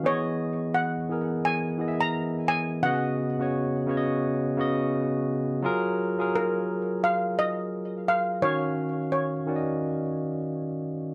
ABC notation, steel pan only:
X:1
M:4/4
L:1/16
Q:"Swing 16ths" 1/4=86
K:F#
V:1 name="Steel pan"
c4 f4 g3 a3 g2 | f12 z4 | z4 A4 e2 d4 e2 | c4 c6 z6 |]